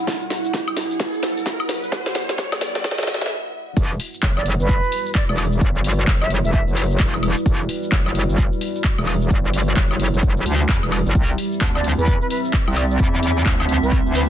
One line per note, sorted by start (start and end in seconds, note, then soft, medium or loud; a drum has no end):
0.00 3.30 G3 medium
0.00 3.27 B3 medium
0.00 3.30 E4 medium
0.00 3.27 F#4 medium
0.00 3.27 G4 medium
0.00 3.30 F#5 medium
0.00 riser medium
0.07 3.27 F#5 medium
0.07 kick loud
0.07 snare medium
0.07 shaker medium
0.22 shaker soft
0.30 snare medium
0.30 open hi-hat loud
0.45 shaker medium
0.53 kick loud
0.53 snare medium
0.53 shaker medium
0.68 high woodblock medium
0.68 shaker soft
0.77 snare medium
0.77 open hi-hat loud
0.91 shaker medium
1.00 kick loud
1.00 snare medium
1.00 shaker medium
1.14 shaker soft
1.23 snare medium
1.23 open hi-hat loud
1.37 shaker medium
1.46 kick loud
1.46 snare medium
1.46 shaker medium
1.60 high woodblock medium
1.60 shaker soft
1.69 snare medium
1.69 open hi-hat loud
1.83 shaker medium
1.92 kick loud
1.92 snare medium
1.92 shaker medium
2.06 snare medium
2.06 shaker soft
2.15 snare medium
2.15 open hi-hat loud
2.29 snare medium
2.29 shaker medium
2.38 kick loud
2.38 snare medium
2.38 shaker medium
2.52 snare medium
2.52 high woodblock medium
2.52 shaker soft
2.61 snare loud
2.61 open hi-hat loud
2.75 snare medium
2.75 shaker medium
2.84 kick loud
2.84 snare loud
2.84 shaker medium
2.91 snare medium
2.98 snare medium
2.98 shaker soft
3.03 snare medium
3.07 snare loud
3.07 open hi-hat loud
3.14 snare medium
3.21 snare medium
3.21 shaker medium
3.26 snare medium
3.77 3.98 E1 loud
3.77 14.29 G3 medium
3.77 11.11 E4 medium
3.77 11.11 F#4 medium
3.77 11.11 B4 medium
3.77 kick loud
3.77 shaker medium
3.91 shaker soft
4.00 open hi-hat loud
4.14 shaker medium
4.23 4.58 F#1 loud
4.23 kick loud
4.23 clap loud
4.23 shaker medium
4.37 14.29 G3 medium
4.37 4.46 D5 medium
4.37 high woodblock medium
4.37 shaker soft
4.46 open hi-hat loud
4.60 4.81 G1 loud
4.60 5.13 B4 loud
4.60 shaker medium
4.69 kick loud
4.69 shaker medium
4.83 shaker soft
4.92 open hi-hat loud
5.06 shaker medium
5.15 5.24 D5 medium
5.15 kick loud
5.15 clap loud
5.15 shaker medium
5.29 5.60 E1 medium
5.29 5.35 D5 medium
5.29 high woodblock medium
5.29 shaker soft
5.38 open hi-hat loud
5.38 high woodblock medium
5.52 shaker medium
5.61 6.06 G1 medium
5.61 kick loud
5.61 shaker medium
5.76 shaker soft
5.84 open hi-hat loud
5.99 shaker medium
6.07 6.42 F#1 loud
6.07 kick loud
6.07 clap loud
6.07 shaker medium
6.21 6.31 E5 medium
6.21 high woodblock medium
6.21 shaker soft
6.30 open hi-hat loud
6.45 6.65 E1 loud
6.45 6.50 E5 loud
6.45 shaker medium
6.54 6.63 E5 medium
6.54 kick loud
6.54 shaker medium
6.68 6.98 F#1 medium
6.68 shaker soft
6.77 open hi-hat loud
6.91 shaker medium
7.00 7.35 E1 loud
7.00 kick loud
7.00 clap loud
7.00 shaker medium
7.14 high woodblock medium
7.14 shaker soft
7.23 open hi-hat loud
7.23 high woodblock medium
7.37 shaker medium
7.46 7.68 E1 loud
7.46 kick loud
7.46 shaker medium
7.60 shaker soft
7.69 open hi-hat loud
7.83 shaker medium
7.92 8.27 F#1 loud
7.92 kick loud
7.92 clap loud
7.92 shaker medium
8.06 high woodblock medium
8.06 shaker soft
8.15 open hi-hat loud
8.29 8.50 G1 loud
8.29 shaker medium
8.38 kick loud
8.38 shaker medium
8.53 shaker soft
8.61 open hi-hat loud
8.76 shaker medium
8.84 kick loud
8.84 clap loud
8.84 shaker medium
8.98 9.29 E1 loud
8.98 high woodblock medium
8.98 shaker soft
9.07 open hi-hat loud
9.07 high woodblock medium
9.22 shaker medium
9.30 9.75 G1 loud
9.30 kick loud
9.30 shaker medium
9.45 shaker soft
9.54 open hi-hat loud
9.68 shaker medium
9.77 10.12 F#1 loud
9.77 kick loud
9.77 clap loud
9.77 shaker medium
9.91 high woodblock medium
9.91 shaker soft
10.00 open hi-hat loud
10.14 10.44 F#1 loud
10.14 shaker medium
10.23 kick loud
10.23 shaker medium
10.37 shaker soft
10.46 10.68 D2 loud
10.46 open hi-hat loud
10.60 shaker medium
10.69 10.81 E2 medium
10.69 kick loud
10.69 clap loud
10.69 shaker medium
10.83 11.04 E1 loud
10.83 high woodblock medium
10.83 shaker soft
10.92 open hi-hat loud
10.92 high woodblock medium
11.06 11.14 G1 loud
11.06 shaker medium
11.15 11.37 C2 medium
11.15 14.29 C4 medium
11.15 14.29 E4 medium
11.15 14.29 E5 medium
11.15 kick loud
11.15 shaker medium
11.29 shaker soft
11.38 open hi-hat loud
11.53 14.29 E5 medium
11.53 shaker medium
11.61 11.96 D2 loud
11.61 kick loud
11.61 clap loud
11.61 shaker medium
11.75 11.85 D5 medium
11.75 high woodblock medium
11.75 shaker soft
11.84 open hi-hat loud
11.98 12.19 E2 loud
11.98 12.21 B4 loud
11.98 shaker medium
12.07 kick loud
12.07 shaker medium
12.21 12.27 B4 medium
12.21 shaker soft
12.30 12.40 B4 medium
12.30 open hi-hat loud
12.45 shaker medium
12.54 kick loud
12.54 clap loud
12.54 shaker medium
12.68 12.98 C2 loud
12.68 high woodblock medium
12.68 shaker soft
12.77 12.86 D5 medium
12.77 open hi-hat loud
12.77 high woodblock medium
12.91 12.97 D5 medium
12.91 shaker medium
13.00 13.44 E2 medium
13.00 kick loud
13.00 shaker medium
13.14 shaker soft
13.23 open hi-hat loud
13.37 shaker medium
13.46 13.81 D2 loud
13.46 kick loud
13.46 clap loud
13.46 shaker medium
13.60 high woodblock medium
13.60 shaker soft
13.69 open hi-hat loud
13.83 14.04 C2 loud
13.83 13.93 B4 loud
13.83 shaker medium
13.92 kick loud
13.92 shaker medium
14.06 14.29 D2 loud
14.06 shaker soft
14.15 14.24 B4 medium
14.15 open hi-hat loud